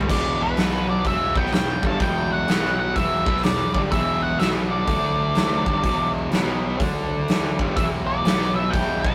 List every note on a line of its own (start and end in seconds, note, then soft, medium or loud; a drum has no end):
0.01 floor tom medium
0.09 0.54 E1 medium
0.09 0.57 E2 loud
0.09 0.56 B2 loud
0.09 0.57 E3 medium
0.09 0.39 G3 medium
0.09 0.42 D5 medium
0.09 kick loud
0.09 crash loud
0.42 0.86 B2 medium
0.42 0.86 B4 medium
0.57 1.02 B1 medium
0.57 1.04 B2 medium
0.57 1.05 F#3 medium
0.57 1.05 B3 medium
0.57 snare loud
0.57 open hi-hat medium
0.90 1.05 D3 medium
0.90 1.06 D5 medium
1.05 1.34 E1 medium
1.05 1.35 E2 medium
1.05 1.35 B2 medium
1.05 1.35 E3 medium
1.05 1.35 E5 medium
1.05 kick medium
1.05 open hi-hat soft
1.35 1.51 B1 medium
1.35 1.52 B2 medium
1.35 1.53 F#3 medium
1.35 1.53 G3 medium
1.35 1.53 B3 medium
1.35 1.53 G5 medium
1.35 kick loud
1.46 snare soft
1.52 1.81 E1 medium
1.52 1.77 E2 medium
1.52 1.78 B2 medium
1.52 1.82 G3 medium
1.52 1.82 G5 medium
1.52 snare loud
1.52 open hi-hat soft
1.83 1.99 G1 medium
1.83 2.00 G2 medium
1.83 2.01 D3 medium
1.83 2.01 G3 medium
1.83 2.01 A3 medium
1.83 2.01 A5 loud
1.83 kick loud
2.00 2.45 E1 medium
2.00 2.48 E2 loud
2.00 2.47 B2 medium
2.00 2.48 E3 loud
2.00 2.29 G3 medium
2.00 2.32 G5 loud
2.00 kick loud
2.00 open hi-hat medium
2.30 2.75 F#3 medium
2.30 2.77 F#5 medium
2.48 2.93 B1 medium
2.48 2.96 B2 medium
2.48 2.96 F#3 medium
2.48 2.96 B3 loud
2.48 snare loud
2.48 open hi-hat medium
2.65 snare soft
2.80 2.95 F#3 medium
2.80 2.95 F#5 medium
2.96 3.25 E1 medium
2.96 3.26 E2 medium
2.96 3.26 B2 medium
2.96 3.41 E3 medium
2.96 3.27 E3 medium
2.96 3.44 E5 medium
2.96 kick medium
2.96 open hi-hat medium
3.26 3.43 B1 medium
3.26 3.43 B2 medium
3.26 3.44 F#3 medium
3.26 3.44 B3 medium
3.26 kick loud
3.37 snare soft
3.43 3.73 E1 medium
3.43 3.69 E2 medium
3.43 3.69 B2 medium
3.43 3.73 G3 medium
3.43 3.73 D5 medium
3.43 snare loud
3.43 open hi-hat medium
3.74 3.91 G1 medium
3.74 3.91 G2 medium
3.74 3.80 D3 medium
3.74 3.92 D3 medium
3.74 3.92 G3 loud
3.74 3.79 D5 medium
3.74 kick loud
3.91 4.37 E1 loud
3.91 4.39 E2 medium
3.91 4.38 B2 loud
3.91 4.21 E3 medium
3.91 4.40 E3 loud
3.91 4.24 E5 medium
3.91 kick loud
3.91 open hi-hat medium
4.22 4.39 F#3 medium
4.22 4.39 F#5 medium
4.39 4.85 B1 medium
4.39 4.87 B2 medium
4.39 4.88 F#3 medium
4.39 4.49 B3 medium
4.39 4.88 B3 loud
4.39 4.47 E5 medium
4.39 snare loud
4.39 open hi-hat medium
4.71 6.11 D3 medium
4.71 6.11 D5 medium
4.87 5.63 D2 medium
4.87 5.66 D3 medium
4.87 5.66 A3 medium
4.87 5.66 D4 medium
4.87 kick loud
4.87 open hi-hat soft
5.35 snare loud
5.35 open hi-hat medium
5.66 5.83 G1 medium
5.66 5.83 G2 medium
5.66 5.84 D3 medium
5.66 5.84 G3 medium
5.66 kick loud
5.83 6.29 E1 medium
5.83 6.32 E2 medium
5.83 6.30 B2 loud
5.83 6.32 E3 loud
5.83 kick loud
5.83 open hi-hat medium
6.31 6.76 B1 medium
6.31 6.80 B2 medium
6.31 6.81 F#3 medium
6.31 6.81 B3 loud
6.31 snare loud
6.31 open hi-hat soft
6.80 7.55 D2 medium
6.80 7.58 D3 medium
6.80 7.59 A3 loud
6.80 7.59 D4 medium
6.80 kick loud
6.80 open hi-hat medium
7.28 snare loud
7.28 open hi-hat medium
7.59 7.75 G1 medium
7.59 7.76 G2 medium
7.59 7.77 D3 medium
7.59 7.77 G3 medium
7.59 kick medium
7.76 8.22 E1 medium
7.76 8.25 E2 medium
7.76 8.24 B2 loud
7.76 7.85 E3 medium
7.76 8.26 E3 medium
7.76 7.85 E5 loud
7.76 kick loud
7.76 open hi-hat medium
8.07 8.53 F#3 medium
8.07 8.55 D5 medium
8.25 8.70 B1 medium
8.25 8.73 B2 medium
8.25 8.73 F#3 loud
8.25 8.74 B3 medium
8.25 snare loud
8.25 open hi-hat medium
8.42 snare soft
8.55 8.72 E3 medium
8.55 8.72 E5 medium
8.70 9.02 E1 medium
8.70 9.04 E2 medium
8.70 9.02 G3 medium
8.70 9.01 G5 medium
8.70 kick loud
8.70 open hi-hat soft
8.75 9.04 B2 medium
8.75 9.05 E3 medium
9.01 9.15 B1 medium
9.01 9.15 E4 medium
9.01 9.15 A5 loud
9.01 kick medium
9.05 9.15 B2 medium
9.05 9.15 F#3 medium
9.05 9.15 B3 loud